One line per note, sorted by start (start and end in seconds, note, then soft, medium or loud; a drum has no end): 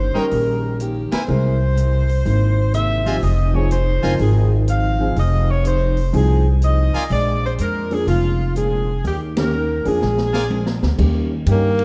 0.00 0.12 G1 medium
0.00 0.16 D#3 medium
0.00 0.17 A#3 medium
0.00 0.17 C#4 medium
0.00 0.17 G4 medium
0.00 0.17 C5 medium
0.14 0.76 G3 medium
0.14 0.77 C#4 medium
0.14 0.26 D#4 medium
0.14 0.77 D#4 medium
0.14 0.26 A#4 medium
0.14 0.77 A#4 medium
0.14 0.26 C#5 medium
0.14 0.26 G5 medium
0.14 muted upright bass stroke soft
0.19 0.82 A#4 medium
0.30 1.09 A#1 medium
0.30 0.65 D#3 soft
0.30 0.65 A#3 soft
0.30 0.66 C#4 soft
0.30 0.66 G4 soft
0.30 open hi-hat soft
0.80 1.14 D#3 medium
0.80 1.14 A#3 medium
0.80 1.14 C#4 medium
0.80 1.15 G4 medium
0.80 closed hi-hat medium
1.12 1.23 E4 medium
1.12 1.23 A#4 medium
1.12 1.23 C5 medium
1.12 2.71 C5 medium
1.12 1.23 G#5 medium
1.12 muted upright bass stroke soft
1.12 snare medium
1.12 ride medium
1.27 2.22 C2 medium
1.27 1.62 C3 soft
1.27 1.57 G#3 medium
1.27 1.63 A#3 soft
1.27 1.57 C4 medium
1.27 1.57 E4 medium
1.27 1.63 E4 soft
1.27 1.63 G#4 soft
1.27 1.58 A#4 medium
1.75 2.10 C3 medium
1.75 2.10 A#3 medium
1.75 2.11 E4 medium
1.75 2.11 G#4 medium
1.75 closed hi-hat soft
2.09 open hi-hat soft
2.25 3.19 G#1 medium
2.25 2.59 C3 soft
2.25 2.60 A#3 medium
2.25 2.60 E4 medium
2.25 2.60 G#4 medium
2.25 open hi-hat soft
2.73 3.08 C3 medium
2.73 3.08 A#3 medium
2.73 3.08 E4 medium
2.73 3.08 G#4 medium
2.73 3.19 E5 loud
2.73 closed hi-hat soft
3.05 3.20 F3 medium
3.05 3.21 C4 soft
3.05 3.21 D#4 medium
3.05 3.17 F4 medium
3.05 3.21 G4 medium
3.05 3.17 C5 medium
3.05 3.17 D#5 medium
3.05 3.17 G#5 medium
3.05 open hi-hat soft
3.22 3.99 F1 medium
3.22 3.56 F3 soft
3.22 3.57 C4 soft
3.22 3.57 D#4 soft
3.22 3.57 G#4 medium
3.22 3.55 D#5 medium
3.22 open hi-hat soft
3.54 3.69 F3 medium
3.54 3.69 C4 medium
3.54 3.70 D#4 medium
3.54 3.70 G#4 medium
3.54 3.71 C#5 medium
3.71 4.05 F3 medium
3.71 4.05 C4 medium
3.71 4.05 D#4 medium
3.71 4.06 G#4 medium
3.71 4.16 C5 medium
3.71 closed hi-hat soft
4.03 4.19 F#1 medium
4.03 4.64 F3 medium
4.03 4.65 C4 medium
4.03 4.65 D#4 medium
4.03 4.14 F4 medium
4.03 4.65 A#4 medium
4.03 4.14 C5 medium
4.03 4.14 D#5 medium
4.03 4.14 G#5 loud
4.19 5.13 G#1 medium
4.19 4.53 F3 soft
4.19 4.53 C4 soft
4.19 4.54 D#4 soft
4.19 4.50 G#4 medium
4.19 4.54 G#4 soft
4.19 open hi-hat soft
4.67 5.02 F3 medium
4.67 5.02 C4 medium
4.67 5.02 D#4 medium
4.67 5.02 G#4 medium
4.67 5.14 F5 medium
4.67 closed hi-hat soft
4.99 5.14 F3 medium
4.99 5.15 C4 medium
4.99 5.15 D#4 medium
4.99 5.15 G#4 medium
5.16 6.10 F1 medium
5.16 5.50 F3 soft
5.16 5.50 C4 soft
5.16 5.50 D#4 medium
5.16 5.51 G#4 medium
5.16 5.50 D#5 loud
5.16 open hi-hat soft
5.51 5.66 C#5 medium
5.64 5.98 F3 medium
5.64 5.99 C4 medium
5.64 5.99 D#4 medium
5.64 5.99 G#4 medium
5.64 closed hi-hat soft
5.68 6.12 C5 medium
5.97 open hi-hat soft
6.13 6.90 C2 medium
6.13 6.47 F3 soft
6.13 6.42 F3 medium
6.13 6.42 C4 medium
6.13 6.47 C4 soft
6.13 6.47 D#4 soft
6.13 6.43 D#4 medium
6.13 6.43 G#4 medium
6.13 6.48 G#4 medium
6.13 6.47 G#4 medium
6.13 open hi-hat soft
6.62 6.96 F3 medium
6.62 6.96 C4 medium
6.62 6.97 D#4 medium
6.62 6.97 G#4 medium
6.62 7.09 D#5 loud
6.62 closed hi-hat soft
6.94 7.05 F4 medium
6.94 7.05 A#4 medium
6.94 7.05 D5 medium
6.94 7.05 G#5 loud
6.94 muted upright bass stroke soft
6.94 open hi-hat soft
7.10 7.56 A#1 medium
7.10 7.44 A#2 soft
7.10 7.45 F3 soft
7.10 7.45 G#3 medium
7.10 7.45 D4 soft
7.10 7.42 D5 loud
7.10 open hi-hat soft
7.45 7.52 C5 medium
7.58 8.04 F2 medium
7.58 7.93 A#2 medium
7.58 7.93 F3 medium
7.58 7.93 G#3 medium
7.58 7.93 D4 medium
7.58 7.91 A#4 medium
7.58 closed hi-hat medium
7.91 8.06 F3 medium
7.91 8.06 A#3 soft
7.91 8.06 D4 soft
7.91 8.07 G#4 medium
7.91 8.09 G#4 medium
7.91 open hi-hat soft
8.06 9.00 F1 medium
8.06 8.41 A#2 soft
8.06 8.41 F3 medium
8.06 8.42 G#3 medium
8.06 8.42 D4 soft
8.06 8.53 F4 medium
8.06 open hi-hat soft
8.56 8.90 A#2 medium
8.56 8.90 F3 medium
8.56 8.90 G#3 medium
8.56 8.90 D4 medium
8.56 9.05 G#4 medium
8.56 closed hi-hat soft
9.04 9.81 D#2 medium
9.04 9.38 D#3 soft
9.04 9.38 A#3 soft
9.04 9.39 C#4 soft
9.04 9.39 G4 soft
9.04 9.21 G4 medium
9.04 open hi-hat soft
9.36 9.51 D#3 medium
9.36 9.52 A#3 medium
9.36 9.52 C#4 medium
9.36 9.52 G4 medium
9.36 9.83 A#4 medium
9.36 snare medium
9.36 ride medium
9.53 9.87 D#3 medium
9.53 9.87 A#3 medium
9.53 9.87 C#4 medium
9.53 9.87 G4 medium
9.85 10.01 F2 medium
9.85 10.00 F3 medium
9.85 10.00 A#3 medium
9.85 10.00 D4 medium
9.85 10.01 G#4 medium
9.85 10.79 G#4 medium
9.85 open hi-hat soft
10.01 10.79 A#1 medium
10.01 10.35 A#2 soft
10.01 10.36 F3 soft
10.01 10.36 G#3 soft
10.01 10.36 D4 soft
10.01 snare soft
10.18 snare medium
10.33 10.45 F4 medium
10.33 10.45 A#4 medium
10.33 10.45 D5 medium
10.33 10.45 G#5 loud
10.33 snare medium
10.49 10.84 A#2 medium
10.49 10.84 F3 medium
10.49 10.84 G#3 medium
10.49 10.84 D4 medium
10.49 high tom medium
10.66 snare medium
10.82 10.97 D2 medium
10.82 snare medium
10.98 11.46 D#2 medium
10.98 11.27 D#3 medium
10.98 11.32 D#3 soft
10.98 11.27 G3 soft
10.98 11.27 A#3 soft
10.98 11.32 A#3 soft
10.98 11.28 C#4 soft
10.98 11.33 C#4 soft
10.98 11.28 G4 medium
10.98 11.33 G4 medium
10.98 kick medium
10.98 crash medium
11.46 11.85 G2 medium
11.46 11.80 D#3 medium
11.46 11.69 D#3 medium
11.46 11.81 A#3 medium
11.46 11.69 A#3 medium
11.46 11.68 C#4 medium
11.46 11.81 C#4 medium
11.46 11.69 G4 medium
11.46 11.81 G4 medium
11.46 hi-hat pedal soft
11.46 ride medium
11.52 11.85 A#3 medium
11.79 ride soft